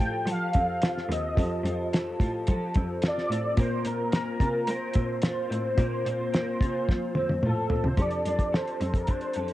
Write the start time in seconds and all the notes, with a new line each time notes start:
Already playing: F3 F4 G4 A4 C5 G5
0.00 A2 F4, closed hi-hat
0.26 F3 A4, closed hi-hat
0.31 F5
0.53 F2 C4, kick, closed hi-hat
0.82 F4, snare, closed hi-hat
0.98 snare
1.09 D#2 C4 D#5, closed hi-hat
1.34 F2 F3 F4 G4 A4, kick, closed hi-hat
1.39 A4 C5
1.63 F2 F4, closed hi-hat
1.93 A4, snare, closed hi-hat
2.20 A2 F4, kick, closed hi-hat
2.47 F3 A4, kick, closed hi-hat
2.74 F2 C4, kick, closed hi-hat
3.02 F4, snare, closed hi-hat
3.07 D5
3.18 snare
3.29 A2 C4, closed hi-hat
3.55 A#2 A#3 C4 F4 A#4, kick, closed hi-hat
3.59 A#4 C5
3.85 A#2 F4 A#4, closed hi-hat
4.12 A#4, snare, closed hi-hat
4.40 C3 F4, kick, closed hi-hat
4.67 A#3 A#4 C5, closed hi-hat
4.94 A#2 C4, kick, closed hi-hat
5.22 F4, snare, closed hi-hat
5.49 A2 C4, closed hi-hat
5.75 A#2 A#3 C4 F4, kick, closed hi-hat
5.79 A#4 C5
6.05 A#2 F4, closed hi-hat
6.32 A#4, snare, closed hi-hat
6.60 C3 F4, kick, closed hi-hat
6.89 F3, kick, snare
7.15 F2 C4, high tom
7.29 F2, high tom
7.43 A2 F4 A4 C5, mid tom
7.70 A#2 C4, floor tom
7.84 C3 C5, floor tom
7.95 F2 F3 C4 D4 G4 A4, kick, closed hi-hat
8.00 A4 D5
8.11 closed hi-hat
8.25 F2 D4, closed hi-hat
8.39 kick, closed hi-hat
8.52 A4 C5, snare
8.67 closed hi-hat
8.80 F2 C4, closed hi-hat
8.94 A#4, kick, closed hi-hat
9.07 D4 C5, kick, closed hi-hat
9.21 closed hi-hat
9.33 F2 A4, closed hi-hat
9.48 closed hi-hat